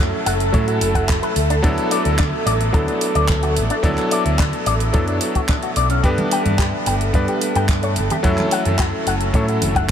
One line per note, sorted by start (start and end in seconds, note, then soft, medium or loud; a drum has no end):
0.00 0.11 F#2 medium
0.00 0.50 F#3 medium
0.00 0.50 A3 medium
0.00 6.03 A3 medium
0.00 0.50 C#4 medium
0.00 0.51 E4 medium
0.00 0.51 A4 loud
0.00 6.03 A4 medium
0.26 0.49 F#1 loud
0.26 0.33 F#5 medium
0.26 open hi-hat loud
0.40 closed hi-hat medium
0.52 0.77 A2 medium
0.52 1.34 F#3 medium
0.52 1.34 A3 medium
0.52 1.35 C#4 medium
0.52 1.35 E4 medium
0.52 1.35 A4 medium
0.52 0.64 C#5 medium
0.52 kick loud
0.52 closed hi-hat medium
0.68 0.78 F#4 medium
0.68 closed hi-hat soft
0.81 1.19 F#1 medium
0.81 open hi-hat loud
0.95 1.05 F#5 medium
0.95 kick medium
0.95 closed hi-hat medium
1.09 kick loud
1.09 clap loud
1.09 closed hi-hat medium
1.23 1.33 B4 medium
1.23 closed hi-hat soft
1.36 1.59 D2 medium
1.36 open hi-hat medium
1.50 1.54 D4 loud
1.50 closed hi-hat medium
1.62 2.70 F#3 medium
1.62 2.70 B3 medium
1.62 1.68 D4 loud
1.62 2.71 D4 medium
1.62 2.71 E4 medium
1.62 2.71 A4 loud
1.62 kick loud
1.62 closed hi-hat medium
1.78 closed hi-hat soft
1.91 2.02 D5 medium
1.91 open hi-hat loud
2.05 2.17 D2 medium
2.05 closed hi-hat medium
2.19 2.31 D2 medium
2.19 2.23 D4 loud
2.19 kick loud
2.19 clap loud
2.19 closed hi-hat medium
2.46 2.69 A1 loud
2.46 2.53 D5 medium
2.46 open hi-hat loud
2.61 closed hi-hat medium
2.72 2.86 D2 loud
2.72 3.80 F#3 medium
2.72 3.80 B3 medium
2.72 3.81 D4 medium
2.72 3.81 E4 medium
2.72 2.84 A4 medium
2.72 3.81 A4 medium
2.72 kick loud
2.72 closed hi-hat medium
2.88 2.98 D4 medium
2.88 closed hi-hat soft
3.01 open hi-hat loud
3.15 3.58 D2 loud
3.15 3.25 D5 medium
3.15 closed hi-hat medium
3.29 kick loud
3.29 clap loud
3.29 closed hi-hat medium
3.43 3.53 F#4 medium
3.43 closed hi-hat soft
3.57 3.68 A1 medium
3.57 open hi-hat loud
3.70 3.75 D4 loud
3.70 closed hi-hat medium
3.83 3.95 D2 loud
3.83 4.90 F#3 medium
3.83 4.91 B3 medium
3.83 4.91 D4 medium
3.83 3.88 D4 loud
3.83 4.91 E4 medium
3.83 4.91 A4 loud
3.83 kick loud
3.83 closed hi-hat medium
3.98 clap soft
3.98 closed hi-hat soft
4.11 4.22 D5 medium
4.11 open hi-hat loud
4.25 4.37 D2 medium
4.25 closed hi-hat medium
4.39 4.51 D2 medium
4.39 4.43 D4 loud
4.39 kick loud
4.39 clap loud
4.39 closed hi-hat medium
4.53 closed hi-hat soft
4.66 4.90 A1 loud
4.66 4.73 D5 medium
4.66 open hi-hat loud
4.80 closed hi-hat medium
4.93 5.17 F#2 medium
4.93 6.00 F#3 medium
4.93 6.01 B3 medium
4.93 6.01 D4 medium
4.93 6.01 E4 medium
4.93 5.04 A4 medium
4.93 6.01 A4 medium
4.93 kick loud
4.93 closed hi-hat medium
5.08 5.18 D4 medium
5.08 closed hi-hat soft
5.21 open hi-hat loud
5.35 5.40 F#4 medium
5.35 kick medium
5.35 closed hi-hat soft
5.49 5.56 D4 medium
5.49 kick loud
5.49 clap loud
5.49 closed hi-hat medium
5.63 5.70 F#4 medium
5.63 closed hi-hat soft
5.76 6.00 B1 loud
5.76 5.87 D5 medium
5.76 open hi-hat medium
5.90 6.01 C#4 loud
5.90 closed hi-hat medium
6.03 6.16 G2 loud
6.03 7.11 G3 medium
6.03 9.91 A3 medium
6.03 7.11 B3 medium
6.03 7.11 D4 medium
6.03 6.08 G4 loud
6.03 9.91 A4 medium
6.03 7.12 B4 loud
6.03 kick loud
6.03 closed hi-hat medium
6.18 closed hi-hat soft
6.18 high conga medium
6.18 low conga medium
6.31 6.42 G5 medium
6.31 open hi-hat loud
6.46 6.57 G2 medium
6.46 closed hi-hat soft
6.46 low conga medium
6.59 6.64 G4 loud
6.59 kick loud
6.59 clap loud
6.59 closed hi-hat medium
6.86 7.10 G1 loud
6.86 6.94 G5 medium
6.86 open hi-hat medium
7.01 closed hi-hat medium
7.13 7.26 G2 loud
7.13 8.21 G3 medium
7.13 8.21 B3 medium
7.13 8.21 D4 medium
7.13 8.21 B4 medium
7.13 7.25 D5 medium
7.13 kick loud
7.13 closed hi-hat medium
7.28 7.38 G4 medium
7.28 closed hi-hat soft
7.41 open hi-hat loud
7.55 7.98 G2 loud
7.55 7.66 G5 medium
7.55 closed hi-hat soft
7.69 kick loud
7.69 clap loud
7.69 closed hi-hat medium
7.83 7.94 C#5 medium
7.83 closed hi-hat soft
7.96 8.08 G1 medium
7.96 open hi-hat medium
8.10 8.15 G4 loud
8.10 closed hi-hat medium
8.10 low conga medium
8.23 8.36 F#2 loud
8.23 9.30 F#3 medium
8.23 9.31 A3 medium
8.23 9.31 C#4 medium
8.23 9.31 E4 medium
8.23 8.29 F#4 loud
8.23 9.31 A4 loud
8.23 kick loud
8.23 closed hi-hat medium
8.38 clap soft
8.38 closed hi-hat soft
8.38 high conga medium
8.38 low conga medium
8.51 8.63 F#5 medium
8.51 open hi-hat loud
8.65 8.77 F#2 medium
8.65 closed hi-hat medium
8.65 low conga medium
8.79 8.91 F#2 medium
8.79 8.84 F#4 loud
8.79 kick loud
8.79 clap loud
8.79 closed hi-hat medium
9.07 9.30 F#1 loud
9.07 9.14 F#5 medium
9.07 open hi-hat medium
9.21 closed hi-hat medium
9.33 9.57 A2 medium
9.33 9.91 F#3 medium
9.33 9.91 A3 medium
9.33 9.91 C#4 medium
9.33 9.91 E4 medium
9.33 9.91 A4 medium
9.33 9.45 C#5 medium
9.33 kick loud
9.33 closed hi-hat medium
9.48 9.59 F#4 medium
9.48 closed hi-hat soft
9.62 9.91 F#1 loud
9.62 open hi-hat loud
9.62 low conga medium
9.75 9.86 F#5 medium
9.75 kick medium
9.75 closed hi-hat medium
9.75 high conga medium